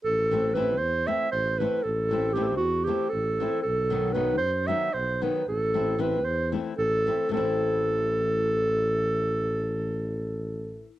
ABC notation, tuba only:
X:1
M:7/8
L:1/8
Q:1/4=115
K:none
V:1 name="Tuba" clef=bass
A,,,3 E,,2 A,,,2 | A,,,3 E,,2 A,,,2 | B,,,3 ^F,,2 B,,,2 | A,,,3 E,,2 A,,,2 |
A,,,6- A,,,- | A,,,6- A,,, |]